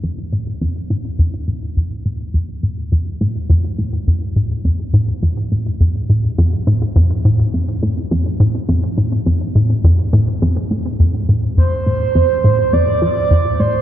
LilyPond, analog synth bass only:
\new Staff \with { instrumentName = "Analog synth bass" } { \clef bass \time 4/4 \key f \major \tempo 4 = 104 f,8 a,8 f,8 a,16 r16 f,8 a,8 f,8 a,8 | f,8 a,8 f,8 a,16 r16 f,8 a,8 f,8 a,8 | f,8 a,16 r16 f,8 a,8 f,8 a,8 f,8 a,16 r16 | f,8 a,8 f,8 a,8 f,8 a,16 r16 f,8 a,8 |
f,8 a,8 f,8 a,16 r16 f,8 a,8 f,8 a,8 | f,8 a,8 f,8 a,16 r16 f,8 f8 f,8 a,8 | }